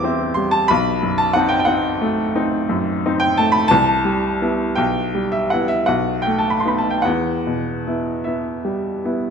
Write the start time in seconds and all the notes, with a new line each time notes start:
Already playing: A1 E2 G3 C4 E4 A5 D6
0.04 C4 E4
0.34 G3 C6
0.51 A5
0.68 B1 B5
1.03 F#2
1.18 A5
1.33 C4 D#4 F#5
1.49 G5
1.59 G5
1.65 C4 D#4 F#5
2.01 A3
2.35 C4 D#4
2.69 F#2
3.06 C4 D#4
3.20 G5
3.38 A3 A5
3.52 B5
3.68 C2 A5
4.05 G3
4.42 B3 E4
4.75 B1 G5
5.15 G3
5.32 E5
5.50 B3 E4 F#5
5.68 E5
5.86 B1 F#5
6.22 G5
6.27 A3
6.39 A5
6.50 B5
6.60 C6
6.65 B3 D#4 B5
6.78 A5
6.90 G5
7.02 E2 F#5
7.47 B2
7.87 B3 E4
8.24 B3 E4 E5
8.65 G3
9.05 B3 E4